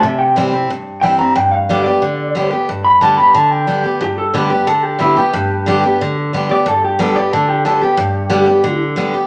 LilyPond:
<<
  \new Staff \with { instrumentName = "Clean electric guitar" } { \time 4/4 \key g \major \tempo 4 = 181 <g' e''>8 g''8 r2 g''8 bes''8 | g''8 f''4 d''2 r8 | r8 b''8 a''8 b''8 a''8 g''4. | g'8 a'8 b'4 a'8 g'8 e'8 g'8~ |
g'2~ g'8 r4 d''8 | a'8 g'8 a'8 d''8 a'8 g'8 a'8 g'8~ | g'2~ g'8 r4. | }
  \new Staff \with { instrumentName = "Steel-string acoustic guitar" } { \time 4/4 \key g \major << { r4 <e g c' e'>8 <c' e'>8 r4 <e g c' e'>8 <c' e'>8 | r4 <d g b g'>8 <b g'>8 r4 <d g b g'>8 <b g'>8 | r4 <d g b g'>8 <b g'>8 r4 <d g b g'>8 <b g'>8 | r4 <d g b g'>8 <b g'>8 r4 <d g b g'>8 <b g'>8 |
r4 <d g b g'>8 <b g'>8 r4 <d g b g'>8 <b g'>8 | r4 <d g b g'>8 <b g'>8 r4 <d g b g'>8 <b g'>8 | r4 <d g b g'>8 <b g'>8 r4 <d g b g'>8 <b g'>8 | } \\ { c2 g,2 | g,2 d2 | g,2 d2 | g,2 d2 |
g,2 d2 | g,2 d2 | g,2 d2 | } >> }
>>